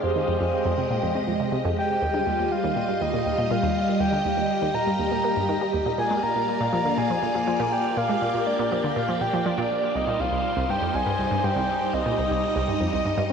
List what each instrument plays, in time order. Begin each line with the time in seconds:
Already playing: string machine G#3 G4
0.03 synth arpeggio sound F2, soft synth lead C5, string machine D#5
0.16 synth arpeggio sound D#3
0.28 synth arpeggio sound F2
0.41 synth arpeggio sound F2
0.65 synth arpeggio sound F2
0.78 synth arpeggio sound C3
0.90 synth arpeggio sound A#2
1.03 synth arpeggio sound F2
1.15 synth arpeggio sound C3
1.27 synth arpeggio sound F2
1.40 synth arpeggio sound C3
1.52 synth arpeggio sound C3
1.65 synth arpeggio sound F2
1.78 soft synth lead G5
2.02 synth arpeggio sound D#2, string machine G3 F4 D#5
2.14 synth arpeggio sound D3
2.27 synth arpeggio sound D#2
2.39 synth arpeggio sound D#2
2.52 soft synth lead F5
2.64 synth arpeggio sound D#2
2.76 synth arpeggio sound A#2
2.89 synth arpeggio sound G2
3.01 synth arpeggio sound D#2, soft synth lead D#5
3.14 synth arpeggio sound A#2
3.26 synth arpeggio sound D#2
3.38 synth arpeggio sound A#2
3.51 synth arpeggio sound A#2, soft synth lead F5
3.63 synth arpeggio sound D#2
4.00 synth arpeggio sound D#2, string machine G4, soft synth lead G5
4.13 synth arpeggio sound D3
4.25 synth arpeggio sound D#2
4.37 synth arpeggio sound D#2
4.62 synth arpeggio sound D#2
4.74 synth arpeggio sound A#2, soft synth lead A#5
4.87 synth arpeggio sound G2
4.99 synth arpeggio sound D#2, soft synth lead A#5
5.12 synth arpeggio sound A#2
5.24 synth arpeggio sound A#3
5.37 synth arpeggio sound G2
5.49 synth arpeggio sound D#3
5.61 synth arpeggio sound G3
5.74 synth arpeggio sound D#2
5.86 synth arpeggio sound A#2
5.98 synth arpeggio sound A#2, string machine A#3 F4 D5, soft synth lead G#5
6.11 synth arpeggio sound G#3
6.23 synth arpeggio sound A#2, soft synth lead A#5
6.36 synth arpeggio sound A#2
6.61 synth arpeggio sound A#2
6.73 synth arpeggio sound F3, soft synth lead A#5
6.85 synth arpeggio sound D3
6.98 synth arpeggio sound A#2, soft synth lead G#5
7.10 synth arpeggio sound F3
7.23 synth arpeggio sound A#2
7.35 synth arpeggio sound F3
7.47 synth arpeggio sound F3
7.60 synth arpeggio sound A#2
7.72 soft synth lead G5
7.97 synth arpeggio sound A#2, string machine G4, soft synth lead F5
8.09 synth arpeggio sound G#3
8.22 synth arpeggio sound A#2
8.34 synth arpeggio sound A#2
8.47 soft synth lead D5
8.59 synth arpeggio sound A#2
8.72 synth arpeggio sound F3
8.84 synth arpeggio sound D3
8.96 synth arpeggio sound A#2, soft synth lead F5
9.09 synth arpeggio sound F3
9.21 synth arpeggio sound A#2, soft synth lead G5
9.33 synth arpeggio sound F3
9.46 synth arpeggio sound F3, soft synth lead D5
9.58 synth arpeggio sound A#2
9.95 synth arpeggio sound C2, string machine G3 D#4 C5, soft synth lead D#5
10.07 synth arpeggio sound A#2
10.20 synth arpeggio sound C2, soft synth lead F5
10.32 synth arpeggio sound C2
10.57 synth arpeggio sound C2
10.69 synth arpeggio sound G2, soft synth lead G5
10.82 synth arpeggio sound F2
10.94 synth arpeggio sound C2, soft synth lead G#5
11.06 synth arpeggio sound G2
11.19 synth arpeggio sound C2
11.31 synth arpeggio sound G2
11.44 synth arpeggio sound G2, soft synth lead G5
11.56 synth arpeggio sound C2
11.93 synth arpeggio sound C2, string machine D#5, soft synth lead D#5
12.06 synth arpeggio sound A#2
12.18 synth arpeggio sound C2
12.31 synth arpeggio sound C2
12.56 synth arpeggio sound C2
12.68 synth arpeggio sound G2
12.81 synth arpeggio sound F2
12.93 synth arpeggio sound C2
13.05 synth arpeggio sound G2
13.18 synth arpeggio sound G2